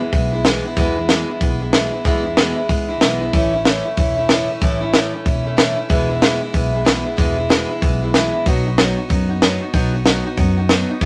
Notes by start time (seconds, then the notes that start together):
0.00 E3 G#3 B3 E4
0.12 B1 E3 G#3 B3 E4, kick, open hi-hat
0.32 E3 G#3 B3 E4
0.44 E2 B2 E3 G#3 B3 E4, snare, open hi-hat
0.65 E3 G#3 B3 E4
0.77 E2 B2 E3 G#3 B3 E4, kick, open hi-hat
0.96 E3 G#3 B3 E4
1.09 E2 B2 E3 G#3 B3 E4, snare, open hi-hat
1.29 E3 G#3 B3 E4
1.40 B1 E3 G#3 B3 E4, kick, open hi-hat
1.60 E3 G#3 B3 E4
1.73 E2 B2 E3 G#3 B3 E4, snare, open hi-hat
1.92 E3 G#3 B3 E4
2.04 E2 B2 E3 G#3 B3 E4, kick, open hi-hat
2.24 E3 G#3 B3 E4
2.37 E2 B2 E3 G#3 B3 E4, snare, open hi-hat
2.56 E3 G#3 B3 E4
2.68 C#2 E3 G#3 B3 E4, kick, open hi-hat
2.89 E3 G#3 B3 E4
3.01 B1 E2 B2 E3 G#3 B3 E4, snare, open hi-hat
3.21 E3 G#3 B3 E4
3.33 A1 A2 E3 A3 C#4 E4, kick, open hi-hat
3.53 A3 C#4 E4
3.65 A2 E3 A3 C#4 E4, snare, open hi-hat
3.85 A3 C#4 E4
3.97 E1 E3 A3 C#4 E4, kick, open hi-hat
4.16 A3 C#4 E4
4.28 A2 E3 A3 C#4 E4, snare, open hi-hat
4.49 A3 C#4 E4
4.61 A1 A2 E3 A3 C#4 E4, kick, open hi-hat
4.81 A3 C#4 E4
4.93 A2 E3 A3 C#4 E4, snare, open hi-hat
5.13 A3 C#4 E4
5.25 E1 E3 A3 C#4 E4, kick, open hi-hat
5.45 A3 C#4 E4
5.57 A2 E3 A3 C#4 E4, snare, open hi-hat
5.76 A3 C#4 E4
5.89 E1 E2 B2 E3 G#3 B3 E4, kick, open hi-hat
6.09 E3 G#3 B3 E4
6.21 E2 B2 E3 G#3 B3 E4, snare, open hi-hat
6.41 E3 G#3 B3 E4
6.53 B1 E3 G#3 B3 E4, kick, open hi-hat
6.73 E3 G#3 B3 E4
6.85 E2 B2 E3 G#3 B3 E4, snare, open hi-hat
7.04 E3 G#3 B3 E4
7.17 E1 E2 B2 E3 G#3 B3 E4, kick, open hi-hat
7.37 E3 G#3 B3 E4
7.49 E2 B2 E3 G#3 B3 E4, snare, open hi-hat
7.69 E3 G#3 B3 E4
7.81 B1 E3 G#3 B3 E4, kick, open hi-hat
8.01 E3 G#3 B3 E4
8.14 E2 B2 E3 G#3 B3 E4, snare, open hi-hat
8.33 E3 G#3 B3 E4
8.46 B1 B2 F#3 B3 D#4 F#4, kick, open hi-hat
8.66 B3 D#4 F#4
8.78 B2 F#3 B3 D#4 F#4, snare, open hi-hat
8.97 B3 D#4 F#4
9.09 F#2 F#3 B3 D#4 F#4, kick, open hi-hat
9.29 B3 D#4 F#4
9.42 B2 F#3 B3 D#4 F#4, snare, open hi-hat
9.61 B3 D#4 F#4
9.73 B1 B2 F#3 B3 D#4 F#4, kick, open hi-hat
9.93 B3 D#4 F#4
10.05 B2 F#3 B3 D#4 F#4, snare, open hi-hat
10.25 B3 D#4 F#4
10.37 F#2 F#3 B3 D#4 F#4, kick, open hi-hat
10.57 B3 D#4 F#4
10.69 B2 F#3 B3 D#4 F#4, snare, open hi-hat
10.89 B3 D#4 F#4
11.01 E2 B2 E3, kick, open hi-hat